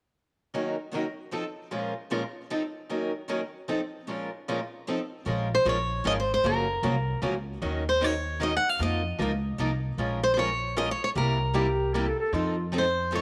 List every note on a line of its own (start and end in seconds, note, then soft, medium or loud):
0.54 0.75 D#3 soft
0.54 0.75 F#3 soft
0.54 0.75 A#3 soft
0.54 0.75 C#4 soft
0.54 0.75 D#4 soft
0.54 0.75 F#4 medium
0.54 0.75 A#4 medium
0.92 1.05 D#3 medium
0.92 1.05 F#3 medium
0.92 1.03 A#3 medium
0.92 1.05 C#4 medium
0.92 1.05 D#4 medium
0.92 1.04 F#4 medium
0.92 1.05 A#4 medium
1.32 1.43 F3 medium
1.32 1.43 C4 medium
1.32 1.44 D#4 medium
1.32 1.44 A4 medium
1.71 1.92 A#2 soft
1.71 1.92 F3 soft
1.71 1.92 G#3 soft
1.71 1.93 C#4 soft
1.71 1.93 F4 medium
1.71 1.93 A#4 medium
2.11 2.22 A#2 medium
2.11 2.22 F3 medium
2.11 2.22 G#3 medium
2.11 2.22 C#4 medium
2.11 2.22 F4 medium
2.11 2.23 A#4 medium
2.50 2.61 F3 medium
2.50 2.62 C4 medium
2.50 2.62 D#4 medium
2.50 2.62 A4 medium
2.89 3.10 D#3 soft
2.89 3.11 F#3 medium
2.89 3.11 A#3 soft
2.89 3.11 C#4 medium
2.89 3.11 D#4 medium
2.89 3.11 F#4 soft
2.89 3.11 A#4 medium
3.29 3.40 D#3 medium
3.29 3.40 F#3 medium
3.29 3.40 A#3 medium
3.29 3.40 C#4 medium
3.29 3.40 D#4 medium
3.29 3.40 F#4 medium
3.29 3.41 A#4 medium
3.68 3.79 F3 medium
3.68 3.80 C4 medium
3.68 3.80 D#4 medium
3.68 3.80 A4 medium
4.08 4.29 A#2 soft
4.08 4.29 F3 medium
4.08 4.29 G#3 soft
4.08 4.29 C#4 soft
4.08 4.29 F4 soft
4.08 4.29 A#4 medium
4.48 4.59 A#2 medium
4.48 4.59 F3 medium
4.48 4.59 G#3 medium
4.48 4.59 C#4 medium
4.48 4.59 F4 medium
4.48 4.59 A#4 medium
4.88 4.98 F3 medium
4.88 4.99 C4 medium
4.88 4.99 D#4 medium
4.88 4.99 A4 medium
5.26 5.58 A#1 medium
5.26 5.47 F3 soft
5.26 5.47 G#3 medium
5.26 5.48 C#4 medium
5.26 5.47 F4 medium
5.26 5.48 A#4 medium
5.55 5.68 C5 medium
5.65 5.99 A#1 medium
5.65 5.76 F3 medium
5.65 5.77 G#3 medium
5.65 5.77 C#4 medium
5.65 5.77 F4 medium
5.65 5.77 A#4 medium
5.65 6.07 C#5 medium
6.05 6.38 G#1 medium
6.05 6.16 F3 medium
6.05 6.16 G#3 medium
6.05 6.16 C#4 medium
6.05 6.16 F4 medium
6.05 6.16 A#4 medium
6.05 6.12 D#5 medium
6.20 6.31 C5 medium
6.34 6.46 C5 medium
6.44 6.75 F#1 medium
6.44 6.65 C#3 medium
6.44 6.65 F3 soft
6.44 6.65 F#3 medium
6.44 6.65 A#3 medium
6.44 6.65 C#4 soft
6.44 6.65 F4 medium
6.44 6.65 F#4 medium
6.44 6.65 A#4 medium
6.44 7.20 A#4 medium
6.83 7.16 C2 medium
6.83 6.94 C#3 medium
6.83 6.94 F3 medium
6.83 6.94 F#3 medium
6.83 6.94 A#3 medium
6.83 6.94 C#4 medium
6.83 6.95 F4 medium
6.83 6.95 F#4 medium
6.83 6.94 A#4 medium
7.22 7.56 C#2 medium
7.22 7.33 C#3 medium
7.22 7.34 F3 medium
7.22 7.33 F#3 medium
7.22 7.34 A#3 medium
7.22 7.34 C#4 medium
7.22 7.33 F4 medium
7.22 7.34 F#4 medium
7.22 7.34 A#4 medium
7.61 8.56 D#2 medium
7.61 7.83 D#3 soft
7.61 7.83 F#3 soft
7.61 7.83 C#4 medium
7.61 7.83 D#4 medium
7.61 7.83 A#4 medium
7.89 8.04 C5 medium
8.01 8.12 D#3 medium
8.01 8.12 F#3 medium
8.01 8.12 C#4 medium
8.01 8.12 D#4 medium
8.01 8.13 A#4 medium
8.01 8.42 C#5 medium
8.40 8.51 D#3 medium
8.40 8.51 F#3 medium
8.40 8.51 C#4 medium
8.40 8.51 D#4 medium
8.40 8.52 A#4 medium
8.40 8.54 D#5 medium
8.57 8.69 F#5 medium
8.69 8.81 F5 medium
8.79 9.11 F2 medium
8.79 9.00 F3 soft
8.79 9.00 A#3 medium
8.79 9.01 D#4 medium
8.79 9.01 F4 medium
8.79 9.01 A#4 medium
8.79 9.56 D#5 medium
9.19 9.53 C#2 medium
9.19 9.30 F3 medium
9.19 9.30 A#3 medium
9.19 9.30 D#4 medium
9.19 9.30 F4 medium
9.19 9.30 A#4 medium
9.58 9.92 C2 medium
9.58 9.70 F3 medium
9.58 9.70 A#3 medium
9.58 9.70 D#4 medium
9.58 9.70 F4 medium
9.58 9.71 A#4 medium
9.98 10.92 A#1 medium
9.98 10.19 F3 soft
9.98 10.19 G#3 medium
9.98 10.19 C#4 medium
9.98 10.19 F4 medium
9.98 10.19 A#4 medium
10.23 10.33 C5 medium
10.34 10.48 F3 medium
10.34 10.48 G#3 medium
10.34 10.48 C#4 medium
10.34 10.48 F4 medium
10.34 10.48 A#4 medium
10.34 10.38 C5 medium
10.39 10.77 C#5 medium
10.76 10.87 F3 medium
10.76 10.88 G#3 medium
10.76 10.88 C#4 medium
10.76 10.88 F4 medium
10.76 10.88 A#4 medium
10.76 10.91 D#5 medium
10.91 11.03 C#5 medium
11.04 11.09 C#5 medium
11.15 12.10 C2 medium
11.15 11.36 C3 medium
11.15 11.37 G3 medium
11.15 11.37 A#3 soft
11.15 11.37 E4 medium
11.15 11.37 G4 medium
11.15 11.91 A#4 medium
11.54 11.66 C3 medium
11.54 11.66 G3 medium
11.54 11.66 A#3 medium
11.54 11.66 E4 medium
11.54 11.66 G4 medium
11.54 11.95 G4 medium
11.94 12.05 C3 medium
11.94 12.05 G3 medium
11.94 12.06 A#3 medium
11.94 12.06 E4 medium
11.94 12.06 G4 medium
11.94 12.09 A#4 medium
12.08 12.19 A4 medium
12.20 12.35 A4 medium
12.32 13.21 F2 medium
12.32 12.54 F3 soft
12.32 12.54 C4 medium
12.32 12.54 D#4 medium
12.32 12.65 F4 medium
12.32 12.54 A4 medium
12.72 12.83 F3 medium
12.72 12.84 C4 medium
12.72 12.84 D#4 medium
12.72 12.84 A4 medium
12.78 13.15 C5 medium
13.12 13.21 F3 medium
13.12 13.21 C4 medium
13.12 13.21 D#4 medium
13.12 13.21 A4 medium
13.12 13.21 C#5 medium